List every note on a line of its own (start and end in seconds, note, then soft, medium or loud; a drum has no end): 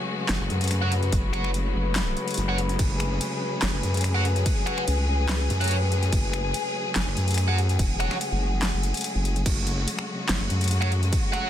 0.00 9.42 C#3 medium
0.00 9.42 F#3 medium
0.00 9.42 G#3 medium
0.00 9.42 A3 medium
0.00 2.77 F#4 medium
0.00 9.46 F#4 medium
0.00 9.46 B4 medium
0.00 0.50 G#5 medium
0.29 0.38 F#1 loud
0.29 snare loud
0.29 clap loud
0.29 closed hi-hat medium
0.40 0.48 F#1 loud
0.48 1.11 F#2 loud
0.48 3.83 B5 medium
0.48 closed hi-hat soft
0.61 closed hi-hat soft
0.64 closed hi-hat medium
0.68 finger snap soft
0.68 closed hi-hat medium
0.71 closed hi-hat medium
0.81 0.91 F#4 medium
0.81 0.91 C#5 medium
0.81 0.91 F#5 medium
0.92 closed hi-hat medium
1.03 closed hi-hat soft
1.12 1.73 F#1 loud
1.12 kick loud
1.12 closed hi-hat medium
1.33 1.48 F#4 medium
1.33 1.48 C#5 medium
1.33 1.48 F#5 loud
1.33 finger snap medium
1.33 closed hi-hat medium
1.44 finger snap medium
1.54 closed hi-hat medium
1.75 2.15 F#1 loud
1.96 snare loud
1.96 clap medium
1.96 closed hi-hat medium
2.17 closed hi-hat soft
2.28 closed hi-hat soft
2.31 closed hi-hat medium
2.34 2.78 F#1 medium
2.34 closed hi-hat medium
2.38 closed hi-hat medium
2.48 2.57 F#4 medium
2.48 2.57 C#5 medium
2.48 2.57 F#5 medium
2.58 closed hi-hat soft
2.69 closed hi-hat soft
2.79 3.19 F#1 medium
2.79 9.44 G#4 medium
2.79 kick loud
2.79 closed hi-hat medium
2.79 crash medium
3.00 finger snap medium
3.00 closed hi-hat soft
3.21 closed hi-hat medium
3.21 crash soft
3.62 3.72 F#1 loud
3.62 snare loud
3.62 clap medium
3.62 closed hi-hat medium
3.62 crash medium
3.73 3.82 F#1 loud
3.81 4.44 F#2 loud
3.81 7.16 G#5 medium
3.81 closed hi-hat soft
3.94 closed hi-hat soft
3.97 closed hi-hat medium
4.01 finger snap medium
4.01 closed hi-hat medium
4.04 closed hi-hat medium
4.04 crash soft
4.15 4.24 F#4 medium
4.15 4.24 C#5 medium
4.15 4.24 F#5 medium
4.25 closed hi-hat medium
4.36 closed hi-hat soft
4.46 kick loud
4.46 closed hi-hat medium
4.46 crash medium
4.66 4.82 F#4 medium
4.66 4.82 C#5 medium
4.66 4.82 F#5 loud
4.66 finger snap medium
4.66 closed hi-hat medium
4.78 finger snap medium
4.88 5.48 C#2 loud
4.88 closed hi-hat medium
4.88 crash soft
5.29 snare loud
5.29 clap medium
5.29 closed hi-hat medium
5.29 crash medium
5.50 6.11 F#2 loud
5.50 closed hi-hat medium
5.61 5.75 F#4 medium
5.61 5.75 C#5 medium
5.61 5.75 F#5 loud
5.61 closed hi-hat soft
5.64 closed hi-hat medium
5.68 closed hi-hat medium
5.71 closed hi-hat medium
5.71 crash soft
5.92 closed hi-hat medium
6.03 closed hi-hat soft
6.12 6.53 F#1 loud
6.12 kick loud
6.12 closed hi-hat medium
6.12 crash medium
6.33 finger snap medium
6.33 closed hi-hat medium
6.54 closed hi-hat medium
6.54 crash soft
6.96 7.05 F#1 loud
6.96 snare loud
6.96 clap medium
6.96 closed hi-hat medium
6.96 crash medium
7.07 7.15 F#1 loud
7.14 7.78 F#2 loud
7.14 9.48 F#5 medium
7.14 closed hi-hat medium
7.28 closed hi-hat soft
7.31 closed hi-hat medium
7.34 finger snap medium
7.34 closed hi-hat medium
7.38 closed hi-hat medium
7.38 crash soft
7.48 7.57 F#4 medium
7.48 7.57 C#5 medium
7.48 7.57 F#5 medium
7.58 closed hi-hat medium
7.69 closed hi-hat soft
7.79 8.09 E1 loud
7.79 kick loud
7.79 closed hi-hat medium
7.79 crash medium
8.00 8.15 F#4 medium
8.00 8.15 C#5 medium
8.00 8.15 F#5 medium
8.00 finger snap medium
8.00 closed hi-hat medium
8.11 finger snap medium
8.11 snare soft
8.21 closed hi-hat medium
8.21 crash soft
8.32 8.72 F#1 medium
8.63 snare loud
8.63 clap loud
8.63 closed hi-hat medium
8.63 crash medium
8.73 8.93 F#1 loud
8.83 closed hi-hat medium
8.94 closed hi-hat medium
8.97 closed hi-hat medium
9.01 closed hi-hat medium
9.04 closed hi-hat medium
9.04 crash soft
9.15 9.44 F#1 loud
9.25 closed hi-hat medium
9.36 closed hi-hat soft
9.46 9.86 F#1 loud
9.46 11.50 C#3 medium
9.46 11.50 F#3 medium
9.46 11.50 G#3 medium
9.46 11.50 A3 medium
9.46 11.50 F#4 medium
9.46 kick loud
9.46 closed hi-hat medium
9.46 crash loud
9.67 closed hi-hat medium
9.88 closed hi-hat medium
9.88 crash soft
9.99 finger snap medium
10.29 10.38 F#1 loud
10.29 snare loud
10.29 clap loud
10.29 closed hi-hat medium
10.29 crash medium
10.40 10.48 F#1 loud
10.50 11.11 F#2 loud
10.50 closed hi-hat medium
10.61 closed hi-hat medium
10.64 closed hi-hat medium
10.68 closed hi-hat medium
10.71 closed hi-hat medium
10.71 crash soft
10.81 10.91 F#4 medium
10.81 10.91 C#5 medium
10.81 10.91 F#5 medium
10.81 finger snap medium
10.92 closed hi-hat medium
11.03 closed hi-hat soft
11.13 kick loud
11.13 closed hi-hat medium
11.13 crash medium
11.33 11.48 F#4 medium
11.33 11.48 C#5 medium
11.33 11.48 F#5 medium
11.33 finger snap medium
11.33 closed hi-hat medium